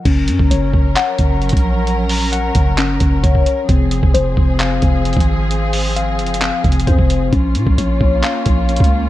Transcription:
0.05 808-style bass F#1, string section F#3 C#4 A#4, tine electric piano C#4, kick, closed hi-hat, crash
0.28 808-style bass F#2, closed hi-hat
0.39 808-style bass F#1, kick
0.51 808-style bass F#1, tine electric piano C#5, closed hi-hat
0.74 808-style bass F#1, kick
0.96 tine electric piano F#5, clap, closed hi-hat
1.19 808-style bass F#1, kick, closed hi-hat
1.42 closed hi-hat
1.49 808-style bass A#1, kick, closed hi-hat
1.57 closed hi-hat
1.87 closed hi-hat
2.09 open hi-hat
2.32 tine electric piano F#5, closed hi-hat
2.55 808-style bass F#1, kick, closed hi-hat
2.78 tine electric piano C#4, clap, closed hi-hat
3.00 808-style bass F#1, kick, closed hi-hat
3.24 808-style bass F#1, tine electric piano C#5, kick, closed hi-hat
3.35 kick
3.46 closed hi-hat
3.69 808-style bass F1, string section F3 C4 G#4, tine electric piano C4, kick, closed hi-hat
3.91 closed hi-hat
4.03 808-style bass F1, kick
4.14 808-style bass F1, tine electric piano C5, closed hi-hat
4.37 808-style bass F1, kick
4.60 tine electric piano F5, clap, closed hi-hat
4.82 808-style bass F1, kick, closed hi-hat
5.05 closed hi-hat
5.13 808-style bass G#1, kick, closed hi-hat
5.20 closed hi-hat
5.51 closed hi-hat
5.73 open hi-hat
5.96 tine electric piano F5, closed hi-hat
6.19 808-style bass F#1, closed hi-hat
6.27 closed hi-hat
6.34 closed hi-hat
6.41 tine electric piano C4, clap, closed hi-hat
6.64 808-style bass F1, kick, closed hi-hat
6.72 closed hi-hat
6.80 closed hi-hat
6.87 808-style bass F2, tine electric piano C5, kick, closed hi-hat
6.99 808-style bass F1, kick
7.10 closed hi-hat
7.33 808-style bass A#1, string section A#3 C#4 F4, tine electric piano C#4, kick, closed hi-hat
7.55 808-style bass A#2, closed hi-hat
7.67 808-style bass A#1, kick
7.78 808-style bass A#1, tine electric piano C#5, closed hi-hat
8.01 808-style bass A#1, kick
8.23 tine electric piano F5, clap, closed hi-hat
8.46 808-style bass A#1, kick, closed hi-hat
8.69 closed hi-hat
8.76 808-style bass C#2, kick, closed hi-hat
8.84 closed hi-hat

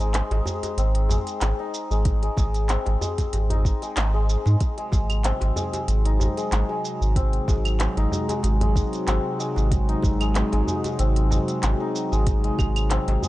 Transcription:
Already playing: sub bass G#1, santur C4 D#4
0.00 santur G#3, shaker
0.14 clap, closed hi-hat, shaker
0.31 sub bass G#1, santur G#3, closed hi-hat, djembe slap
0.46 djembe bass, shaker
0.63 closed hi-hat, djembe tone, shaker
0.77 sub bass G#1, santur C4, closed hi-hat, shaker
0.95 closed hi-hat
1.09 santur G#3, djembe tone, djembe bass, shaker
1.27 closed hi-hat, shaker
1.41 sub bass G#1, clap, closed hi-hat, shaker
1.59 santur D#4
1.74 shaker
1.91 sub bass G#1, santur G#3, shaker
2.05 kick, closed hi-hat, shaker
2.23 santur G#3, closed hi-hat
2.37 sub bass G#1, kick, djembe slap, djembe tone, shaker
2.54 closed hi-hat, shaker
2.69 santur C4, clap, closed hi-hat, shaker
2.86 sub bass G#1, closed hi-hat, djembe slap
3.01 santur G#3, djembe bass, shaker
3.18 kick, closed hi-hat, djembe tone, shaker
3.33 sub bass G#1, closed hi-hat, djembe tone, shaker
3.50 santur D#4, closed hi-hat, djembe bass
3.65 kick, shaker
3.82 santur G#3, closed hi-hat, shaker
3.97 sub bass G#1, clap, closed hi-hat, shaker
4.14 santur G#3
4.30 shaker
4.46 sub bass G#2, djembe slap, shaker
4.60 analog synth pad C3 F#3 G#3 D#4 F#4, kick, closed hi-hat, shaker
4.78 santur G#3, closed hi-hat
4.92 sub bass G#1, kick, djembe slap, djembe tone, shaker
5.10 closed hi-hat, djembe tone, claves, shaker
5.24 santur C4, clap, closed hi-hat, shaker
5.41 sub bass G#1, closed hi-hat, djembe slap
5.56 santur G#3, djembe bass, shaker
5.73 closed hi-hat, djembe tone, shaker
5.88 sub bass G#1, closed hi-hat, shaker
6.05 santur D#4, closed hi-hat
6.20 djembe tone, djembe bass, shaker
6.37 santur G#3, closed hi-hat, shaker
6.52 sub bass G#1, clap, closed hi-hat, shaker
6.69 santur G#3
6.85 shaker
7.01 sub bass G#1, shaker
7.16 santur C4, kick, closed hi-hat, shaker
7.33 closed hi-hat
7.48 sub bass G#1, santur G#3, kick, djembe slap, djembe tone, shaker
7.65 closed hi-hat, claves, shaker
7.80 clap, closed hi-hat, shaker
7.97 sub bass G#1, santur D#4, closed hi-hat, djembe slap
8.12 djembe bass, shaker
8.29 santur G#3, closed hi-hat, djembe tone, shaker
8.43 sub bass G#1, closed hi-hat, djembe tone, shaker
8.61 santur G#3, closed hi-hat, djembe bass
8.76 kick, shaker
8.93 closed hi-hat, shaker
9.07 sub bass G#1, santur C4, clap, closed hi-hat, shaker
9.39 santur G#3, shaker
9.56 sub bass G#1, djembe slap, shaker
9.71 kick, closed hi-hat, shaker
9.88 santur D#4, closed hi-hat
10.03 sub bass G#1, kick, djembe slap, djembe tone, shaker
10.20 santur G#3, closed hi-hat, djembe tone, claves, shaker
10.35 clap, closed hi-hat, shaker
10.52 sub bass G#1, santur G#3, closed hi-hat, djembe slap
10.68 djembe bass, shaker
10.84 closed hi-hat, djembe tone, shaker
10.99 sub bass G#1, santur C4, closed hi-hat, shaker
11.16 closed hi-hat
11.31 santur G#3, djembe tone, djembe bass, shaker
11.48 closed hi-hat, shaker
11.63 sub bass G#1, clap, closed hi-hat, shaker
11.80 santur D#4
11.95 shaker
12.12 sub bass G#1, santur G#3, shaker
12.27 kick, closed hi-hat, shaker
12.44 santur G#3, closed hi-hat
12.58 sub bass G#1, kick, djembe slap, djembe tone, claves, shaker
12.76 closed hi-hat, claves, shaker
12.90 santur C4, clap, closed hi-hat, shaker
13.08 sub bass G#1, closed hi-hat, djembe slap
13.22 santur G#3, djembe bass, shaker

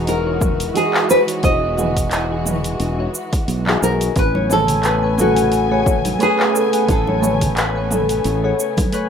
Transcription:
Already playing: fretless electric bass E1, synth keys E3 D#4 F#4 G#4, string section E3 G#3 D#4 F#4
0.07 nylon-string guitar A#4, open hi-hat, cabasa
0.25 synth keys E3 D#4 F#4 C#5
0.41 kick, mid tom, cabasa
0.60 open hi-hat, cabasa
0.74 synth keys E3 D#4 F#4 G#4, nylon-string guitar G#4, open hi-hat, cabasa
0.94 clap
1.10 nylon-string guitar B4, cabasa
1.27 synth keys E3 D#4 F#4 C#5, open hi-hat, cabasa
1.43 fretless electric bass E1, nylon-string guitar D#5, kick, open hi-hat, cabasa
1.76 synth keys E3 D#4 F#4 G#4, mid tom, cabasa
1.97 kick, open hi-hat, cabasa
2.11 clap, open hi-hat, cabasa
2.30 synth keys E3 D#4 F#4 G#4
2.45 mid tom, cabasa
2.64 open hi-hat, cabasa
2.80 fretless electric bass E1, open hi-hat, cabasa
2.98 synth keys E3 D#4 F#4 C#5
3.14 cabasa
3.33 kick, open hi-hat, cabasa
3.48 fretless electric bass B1, open hi-hat, cabasa
3.67 synth keys E3 D#4 F#4 G#4, clap
3.82 fretless electric bass B1, nylon-string guitar A#4, cabasa
4.01 open hi-hat, cabasa
4.16 fretless electric bass A1, string section C#3 A3 B3 G#5, nylon-string guitar B4, kick, open hi-hat, cabasa
4.35 harp C#5, high conga
4.49 synth keys A3 B4 C#5 G#5, nylon-string guitar A4, harp C#5, mid tom, cabasa
4.68 open hi-hat, low conga, cabasa
4.83 harp B4, clap, open hi-hat, cabasa
5.02 synth keys A3 B4 C#5 G#5
5.18 nylon-string guitar F#4, harp A4, mid tom, high conga, cabasa
5.36 open hi-hat, cabasa
5.52 open hi-hat, cabasa
5.70 synth keys A3 G#4 B4 F#5, harp C#5
5.86 harp C#5, kick, mid tom, cabasa
6.05 open hi-hat, high conga, cabasa
6.19 synth keys A3 B4 C#5 G#5, nylon-string guitar G#4, harp B4, open hi-hat, cabasa
6.39 clap
6.55 harp A4, cabasa
6.71 synth keys A3 B4 F#5 G#5, open hi-hat, cabasa
6.88 fretless electric bass A1, nylon-string guitar A4, kick, open hi-hat, cabasa
7.07 harp C#5, high conga
7.21 synth keys A3 B4 C#5 G#5, harp C#5, mid tom, cabasa
7.41 kick, open hi-hat, low conga, cabasa
7.57 harp B4, clap, open hi-hat, cabasa
7.75 synth keys A3 B4 C#5 G#5
7.91 harp A4, mid tom, high conga, cabasa
8.09 open hi-hat, cabasa
8.24 fretless electric bass A1, open hi-hat, cabasa
8.43 synth keys A3 G#4 B4 F#5, harp C#5
8.59 harp C#5, cabasa
8.77 kick, open hi-hat, high conga, cabasa
8.92 synth keys A3 B4 C#5 G#5, harp B4, open hi-hat, cabasa

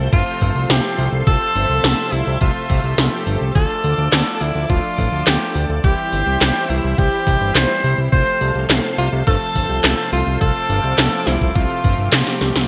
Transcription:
Already playing: string machine A4 C5 C6
0.13 analog synth bass G1, analog polysynth C3 F3 A3 C4 F4, tenor saxophone F4, synth bell F4, kick, closed hi-hat
0.27 closed hi-hat
0.41 analog synth bass G1, kick, open hi-hat
0.55 analog synth bass C2, closed hi-hat
0.70 analog synth bass C2, tenor saxophone G4, synth bell G4, snare, closed hi-hat
0.84 closed hi-hat
0.98 analog synth bass C2, open hi-hat
1.13 analog synth bass C2, closed hi-hat
1.27 analog synth bass C2, analog polysynth C3 F3 A3 C4 F4, tenor saxophone A4, synth bell A4, string machine E5, kick, closed hi-hat
1.41 closed hi-hat
1.56 analog synth bass G1, open hi-hat
1.70 analog synth bass C2, closed hi-hat
1.84 analog synth bass C2, snare, closed hi-hat
1.98 closed hi-hat
2.12 analog synth bass C2, tenor saxophone E4, synth bell E4, open hi-hat
2.27 analog synth bass C2, closed hi-hat
2.41 analog synth bass C2, analog polysynth C3 F3 A3 C4 F4, tenor saxophone F4, synth bell F4, kick, closed hi-hat
2.55 closed hi-hat
2.70 analog synth bass C2, analog polysynth C3 F3 A3 C4 F4, kick, open hi-hat
2.84 analog synth bass C2, closed hi-hat
2.98 analog synth bass C2, snare, closed hi-hat
3.12 analog polysynth C3 F3 A3 C4 G4, closed hi-hat
3.27 analog synth bass G1, open hi-hat
3.41 analog synth bass C2, closed hi-hat
3.55 analog synth bass D2, analog polysynth F3 A3 D4 F4, tenor saxophone A4, synth bell A4, string machine D5 D6, kick, closed hi-hat
3.70 closed hi-hat
3.84 analog synth bass D2, open hi-hat
3.98 analog synth bass D2, closed hi-hat
4.12 analog synth bass D2, snare, clap, closed hi-hat
4.27 closed hi-hat
4.41 analog synth bass D2, tenor saxophone E4, synth bell E4, open hi-hat
4.55 analog synth bass D2, closed hi-hat
4.70 analog synth bass D1, analog polysynth F3 A3 D4 F4, tenor saxophone F4, synth bell F4, kick, closed hi-hat
4.84 closed hi-hat
4.98 analog synth bass A1, kick, open hi-hat
5.12 analog synth bass D2, closed hi-hat
5.27 analog synth bass D2, tenor saxophone G4, synth bell G4, snare, clap, closed hi-hat
5.41 closed hi-hat
5.55 analog synth bass D2, open hi-hat
5.70 analog synth bass D2, closed hi-hat
5.84 analog synth bass C2, analog polysynth E3 G3 C4 E4, tenor saxophone G4, string machine G4 C5 E5 C6, synth bell G4, kick, closed hi-hat
5.98 closed hi-hat
6.13 analog synth bass G1, open hi-hat
6.27 analog synth bass C2, closed hi-hat
6.41 analog synth bass C2, snare, clap, closed hi-hat
6.56 closed hi-hat
6.70 analog synth bass C2, tenor saxophone E4, synth bell E4, open hi-hat
6.84 analog synth bass C2, closed hi-hat
6.98 analog synth bass C2, analog polysynth E3 G3 C4 E4, tenor saxophone G4, synth bell G4, kick, closed hi-hat
7.13 closed hi-hat
7.27 analog synth bass C2, kick, open hi-hat
7.41 analog synth bass G1, closed hi-hat
7.55 analog synth bass C2, tenor saxophone C5, synth bell C5, snare, clap, closed hi-hat
7.70 closed hi-hat
7.84 analog synth bass C2, open hi-hat
7.98 analog synth bass C2, closed hi-hat
8.12 analog synth bass C2, analog polysynth C3 F3 A3 C4 F4, string machine A4 C5 F5, tenor saxophone C5, synth bell C5, kick, closed hi-hat
8.27 closed hi-hat
8.41 analog synth bass C2, open hi-hat
8.55 analog synth bass C2, closed hi-hat
8.70 analog synth bass C2, snare, clap, closed hi-hat
8.84 closed hi-hat
8.98 analog synth bass C2, tenor saxophone F4, synth bell F4, open hi-hat
9.13 analog synth bass C2, closed hi-hat
9.27 analog synth bass G1, analog polysynth C3 F3 A3 C4 F4, tenor saxophone A4, synth bell A4, kick, closed hi-hat
9.41 closed hi-hat
9.55 analog synth bass G1, kick, open hi-hat
9.70 analog synth bass C2, closed hi-hat
9.84 analog synth bass C2, snare, clap, closed hi-hat
9.98 closed hi-hat
10.12 analog synth bass C2, tenor saxophone F4, synth bell F4, open hi-hat
10.27 analog synth bass C2, closed hi-hat
10.41 analog synth bass C2, analog polysynth C3 F3 A3 C4 F4, tenor saxophone A4, synth bell A4, string machine D6, kick, closed hi-hat
10.55 closed hi-hat
10.70 analog synth bass G1, open hi-hat
10.84 analog synth bass C2, closed hi-hat
10.98 analog synth bass C2, snare, clap, closed hi-hat
11.12 closed hi-hat
11.27 analog synth bass C2, tenor saxophone E4, synth bell E4, snare, open hi-hat
11.41 analog synth bass C2, kick, closed hi-hat
11.55 analog synth bass C2, analog polysynth C3 F3 A3 C4 F4, tenor saxophone F4, synth bell F4, kick, closed hi-hat
11.70 closed hi-hat
11.84 analog synth bass G1, analog polysynth C3 F3 A3 C4 F4, kick, open hi-hat
11.98 analog synth bass G1, closed hi-hat
12.12 analog synth bass C2, snare, clap, closed hi-hat
12.27 analog polysynth C3 F3 A3 C4 G4, snare, closed hi-hat
12.41 analog synth bass C2, snare, open hi-hat
12.55 analog synth bass C2, snare, closed hi-hat

